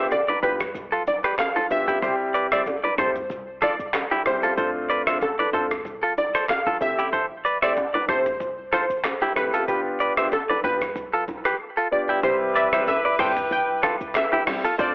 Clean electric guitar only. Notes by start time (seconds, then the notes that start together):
0.29 B4 D5
0.43 G4 B4
0.92 F4 A4
1.24 G4 B4
1.56 F4 A4
1.88 E4 G4
2.03 G4 C5
2.34 B4 D5
2.52 C5 E5
2.84 B4 D5
2.98 A4 C5
3.62 F4 A4
4.11 E4 G4
4.43 F4 A4
4.58 A4 C5
4.90 B4 D5
5.07 C5 E5
5.39 B4 D5
5.53 A4 C5
6.03 F4 A4
6.35 A4 C5
6.67 F4 A4
6.99 E4 G4
7.13 A4 C5
7.45 B4 D5
7.62 C5 E5
7.94 B4 D5
8.09 A4 C5
8.73 F4 A4
9.22 E4 G4
9.54 F4 A4
9.68 G4 B4
10.00 B4 D5
10.18 C5 E5
10.49 B4 D5
10.64 G4 B4
11.13 F4 A4
11.45 G4 B4
11.77 F4 A4
12.09 E4 G4
12.23 G4 C5
12.56 B4 D5
12.73 C5 E5
13.05 B4 D5
13.19 A4 C5
13.83 F4 A4
14.33 E4 G4
14.65 F4 A4
14.79 A4 C5